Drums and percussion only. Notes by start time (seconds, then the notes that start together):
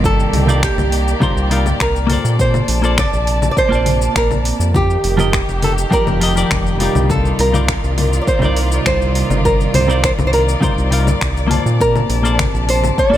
0.04 kick, shaker
0.20 shaker
0.33 open hi-hat, low conga
0.49 shaker
0.63 finger snap, kick, shaker
0.78 low conga, shaker
0.92 open hi-hat
1.08 shaker
1.22 kick, low conga, shaker
1.37 shaker
1.51 open hi-hat
1.66 low conga, shaker
1.80 finger snap, kick, shaker
1.96 shaker
2.10 open hi-hat, low conga
2.25 shaker
2.39 kick, shaker
2.54 low conga, shaker
2.68 open hi-hat
2.84 shaker
2.98 finger snap, kick, low conga, shaker
3.13 shaker
3.27 open hi-hat
3.42 low conga, shaker
3.57 kick, shaker
3.72 shaker
3.86 open hi-hat, low conga
4.02 shaker
4.16 finger snap, kick, shaker
4.31 low conga, shaker
4.45 open hi-hat
4.61 shaker
4.74 kick, low conga, shaker
4.90 shaker
5.04 open hi-hat
5.19 low conga, shaker
5.33 finger snap, kick, shaker
5.49 shaker
5.62 open hi-hat, low conga
5.78 shaker
5.92 kick, shaker
6.07 low conga, shaker
6.21 open hi-hat
6.37 shaker
6.51 finger snap, kick, low conga, shaker
6.66 shaker
6.80 open hi-hat
6.95 low conga, shaker
7.10 kick, low conga, shaker
7.25 shaker
7.39 open hi-hat
7.54 low conga, shaker
7.68 finger snap, kick, shaker
7.84 shaker
7.98 open hi-hat, low conga
8.13 shaker
8.27 kick, shaker
8.42 low conga, shaker
8.56 open hi-hat
8.72 shaker
8.86 finger snap, kick, low conga, shaker
9.02 shaker
9.15 open hi-hat
9.30 low conga, shaker
9.45 kick, shaker
9.61 shaker
9.74 open hi-hat, low conga
9.90 shaker
10.04 finger snap, kick, shaker
10.19 low conga, shaker
10.33 open hi-hat
10.49 shaker
10.62 kick, low conga, shaker
10.78 shaker
10.92 open hi-hat
11.07 low conga, shaker
11.21 finger snap, kick, shaker
11.37 shaker
11.51 open hi-hat, low conga
11.67 shaker
11.81 kick, shaker
11.96 low conga, shaker
12.10 open hi-hat
12.25 shaker
12.39 finger snap, kick, low conga, shaker
12.55 shaker
12.69 open hi-hat
12.84 low conga, shaker
12.98 kick, shaker
13.14 shaker